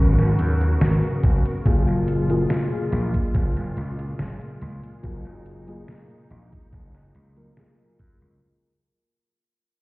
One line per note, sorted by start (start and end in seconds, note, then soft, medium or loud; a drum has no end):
0.00 0.15 G#1 medium
0.00 1.62 C#3 medium
0.00 1.65 F#3 medium
0.00 1.62 B3 medium
0.00 1.68 B3 medium
0.00 1.68 C#4 medium
0.00 1.62 F#4 medium
0.00 1.62 A#4 medium
0.00 1.68 A#4 loud
0.18 0.36 G#1 medium
0.18 snare soft
0.18 closed hi-hat soft
0.39 0.75 D#2 medium
0.39 closed hi-hat medium
0.61 closed hi-hat medium
0.81 1.00 G#1 medium
0.81 snare loud
0.81 closed hi-hat medium
1.03 closed hi-hat soft
1.23 1.42 F#1 medium
1.23 kick loud
1.23 closed hi-hat medium
1.46 closed hi-hat medium
1.65 1.84 F#1 medium
1.65 8.37 A#2 medium
1.65 2.24 F#3 medium
1.65 8.37 G#3 medium
1.65 2.25 A#3 medium
1.65 5.00 F4 medium
1.65 2.25 F4 medium
1.65 2.25 G#4 loud
1.65 kick loud
1.65 closed hi-hat medium
1.87 2.45 F#1 loud
1.87 closed hi-hat soft
2.08 closed hi-hat medium
2.29 2.48 F#3 medium
2.29 2.48 A#3 medium
2.29 2.48 F4 medium
2.29 2.49 G#4 loud
2.29 closed hi-hat medium
2.50 snare loud
2.50 closed hi-hat medium
2.92 3.11 A#1 medium
2.92 closed hi-hat medium
3.14 kick medium
3.14 closed hi-hat soft
3.35 3.53 F#1 medium
3.35 kick loud
3.35 closed hi-hat medium
3.57 3.74 F#1 medium
3.57 closed hi-hat soft
3.77 4.13 C#2 medium
3.77 closed hi-hat medium
3.99 closed hi-hat medium
4.19 4.38 F#1 medium
4.19 snare loud
4.19 closed hi-hat medium
4.41 closed hi-hat soft
4.61 4.80 C#2 medium
4.61 closed hi-hat medium
4.83 closed hi-hat medium
5.03 5.22 F#1 medium
5.03 5.62 F#3 medium
5.03 5.63 A#3 medium
5.03 8.38 D#4 medium
5.03 5.63 F4 medium
5.03 5.63 G#4 loud
5.03 kick loud
5.03 closed hi-hat medium
5.25 5.83 F#1 medium
5.25 closed hi-hat soft
5.46 closed hi-hat medium
5.67 5.86 F#3 medium
5.67 5.86 A#3 medium
5.67 5.86 F4 medium
5.67 5.87 G#4 loud
5.67 closed hi-hat soft
5.88 snare loud
5.88 closed hi-hat medium
6.10 closed hi-hat soft
6.30 6.49 A#1 medium
6.30 closed hi-hat medium
6.52 kick medium
6.52 closed hi-hat soft
6.73 6.91 F#1 medium
6.73 kick loud
6.73 closed hi-hat medium
6.95 7.12 F#1 medium
6.95 snare soft
6.95 closed hi-hat soft
7.15 7.51 C#2 medium
7.15 closed hi-hat medium
7.36 7.52 F#3 medium
7.36 7.52 A#3 medium
7.36 7.53 F4 medium
7.36 7.53 A#4 medium
7.36 closed hi-hat soft
7.57 8.37 F#3 medium
7.57 8.37 A#3 medium
7.57 8.37 F4 medium
7.57 8.37 G#4 medium
7.57 snare loud
7.57 closed hi-hat medium
7.79 closed hi-hat soft
7.99 8.18 F#2 medium
7.99 kick medium
7.99 closed hi-hat medium
8.21 8.39 C#2 medium
8.21 closed hi-hat soft